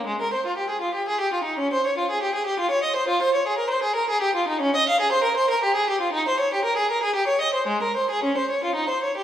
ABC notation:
X:1
M:3/4
L:1/16
Q:1/4=118
K:Dblyd
V:1 name="Violin"
A, B c F G A F G A G F E | D c d F A G A G F d e c | F c d A B c A B A G F E | D e f A c B c B G A G F |
E c d G B A B A G d e c | A, B c A D c d F E c d G |]